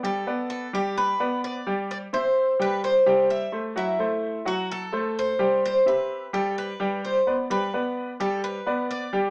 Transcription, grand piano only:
X:1
M:4/4
L:1/8
Q:1/4=129
K:G
V:1 name="Grand piano"
[G,Gg] [B,Bd]2 [G,Gg]2 [B,Bd]2 [G,Gg]- | [G,Gg] [Cce]2 [G,Gg]2 [G,Gg]2 [A,Ac] | [F,Ff] [A,Ac]2 [F,Ff]2 [A,Ac]2 [G,Gg]- | [G,Gg] [CGe]2 [G,Gg]2 [G,Gg]2 [B,Bd] |
[G,Gg] [B,Bd]2 [G,Gg]2 [B,Bd]2 [G,Gg] |]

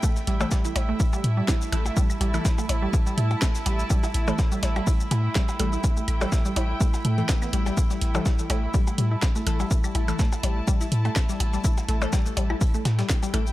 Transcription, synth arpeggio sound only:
X:1
M:4/4
L:1/16
Q:"Swing 16ths" 1/4=124
K:C
V:1 name="Synth arpeggio sound" clef=bass
A, z G, z G, E z A, z G, z G, E z A, z | G, z G, E z A, z G, z G, E z A, z G, z | G, E z A, z G, z G, E z A, z G, z G, E | z A, z G, z G, E z A, z A, z E, B, G, G, |
z G, z G, E z A, z G, z G, E z A, z G, | z G, E z A, z G, z G, E z A, z G, z G, | E z A, z G, z G, E z A, z G, z G, E z |]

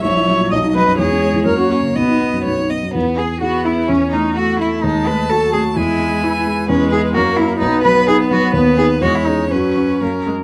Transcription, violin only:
X:1
M:2/4
L:1/8
Q:1/4=127
K:B
V:1 name="Violin"
e2 d2 | c2 c2 | d2 c d | [K:E] B, G F E |
C D F E | a4 | g4 | [K:B] B2 A2 |
B4 | B2 c2 | B2 A z |]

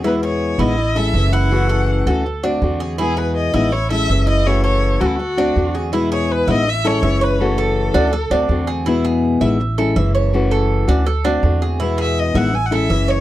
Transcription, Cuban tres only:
X:1
M:4/4
L:1/8
Q:1/4=163
K:E
V:1 name="Cuban tres"
E G2 E2 A2 E- | E A2 A2 =D2 G | E G2 E2 A2 E- | E A2 A2 =D2 G |
E G2 e2 A e c- | c A2 =D A D2 G | E G2 e2 A e c- | c A2 =D A D2 G |
E G2 e2 A e c |]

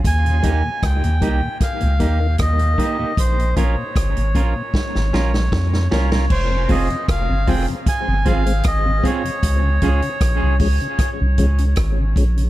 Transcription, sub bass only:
X:1
M:4/4
L:1/16
Q:1/4=77
K:Fm
V:1 name="Sub bass" clef=bass
E,,2 E,, z D,, E,, C,, z2 D,, E,,2 E,,2 z2 | B,,,2 B,,, z G,,, A,,, B,,, z2 A,,, B,,,2 F,,2 C,,2 | F,,,2 F,,, z F,,, G,,, F,,, z2 G,,, A,,,2 A,,,2 z2 | D,,2 D,, z B,,, C,, D,, z2 C,, D,,2 A,,,2 B,,,2 |]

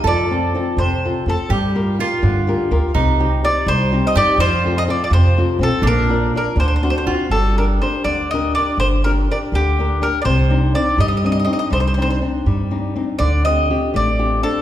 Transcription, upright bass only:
X:1
M:6/8
L:1/16
Q:3/8=82
K:Fmix
V:1 name="Upright bass" clef=bass
F,,6 F,,4 F,, z | G,,6 G,,4 D,, z | C,,6 C,,4 G,, z | F,,6 F,,4 _C,, z |
B,,,6 D,,4 D,, z | [K:Gm] G,,,6 D,,6 | G,,,6 D,,6 | C,,6 G,,6 |
C,,6 G,,6 | D,,6 A,,,6 |]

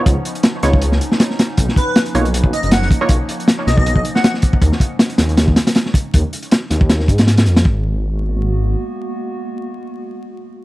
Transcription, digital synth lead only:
X:1
M:4/4
L:1/16
Q:"Swing 16ths" 1/4=158
K:G#dor
V:1 name="Digital synth lead"
z16 | z2 B2 z6 d d f f z2 | z6 d d2 z2 f f z3 | z16 |
z16 | z16 | z16 |]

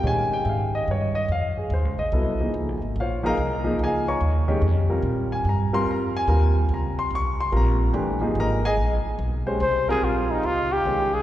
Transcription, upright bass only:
X:1
M:3/4
L:1/8
Q:"Swing" 1/4=144
K:Bbdor
V:1 name="Upright bass" clef=bass
B,, z A,,2 G,,2 | F,,2 (3E,, D,, B,,, C,, z | (3D,, B,,, A,,, B,,,2 C,,2 | D,,2 E,,2 F,,2 |
B,,2 G,,2 F,,2 | E,,2 D,, z C,,2 | B,,,2 G,,,2 A,,,2 | B,,, z _C,,2 =C,,2 |
B,,,2 D,,2 C,,2 |]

